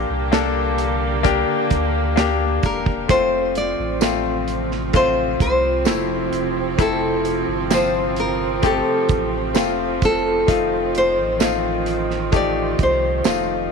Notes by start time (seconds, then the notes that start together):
Already playing: A#2 D3 A#3 D4 G4
0.10 C2
0.32 A#3 D4 A4, snare, closed hi-hat
0.78 closed hi-hat
1.23 A#3 D4 G4, kick, closed hi-hat
1.71 D2, kick, closed hi-hat
2.16 A#3 D4 G4, snare, closed hi-hat
2.63 E1 A#4, kick, closed hi-hat
2.86 kick
3.08 F1 C3 F3 A3 C4 F4 C5, kick, closed hi-hat
3.55 D5, closed hi-hat
3.79 A1
4.01 A3 C4 F4, snare, closed hi-hat, tambourine
4.48 closed hi-hat
4.71 snare
4.93 A3 C4 F4 C5, kick, closed hi-hat
5.40 C2 C5, kick, closed hi-hat
5.85 F1 A3 C4 E4, snare, closed hi-hat, tambourine
6.32 E1, closed hi-hat
6.78 F1 A3 C4 E4 A4, kick, closed hi-hat
7.25 closed hi-hat
7.48 G1
7.70 F3 C4 F4 C5, snare, closed hi-hat, tambourine
8.16 A#4, closed hi-hat
8.62 A3 C4 G4 A4, kick, closed hi-hat
9.09 A1, kick, closed hi-hat
9.54 F1 A3 C4 F4, snare, closed hi-hat, tambourine
10.02 A4, kick, closed hi-hat
10.47 F1 D#3 A3 D#4 F4, kick, closed hi-hat
10.95 C5, closed hi-hat
11.17 A1
11.39 A3 D#4 F4, snare, closed hi-hat, tambourine
11.86 closed hi-hat
12.11 snare
12.32 A3 D#4 G4, kick, closed hi-hat
12.36 D5
12.79 C2, kick, closed hi-hat
12.83 C5
13.24 F1 A3 D#4 F4, snare, closed hi-hat, tambourine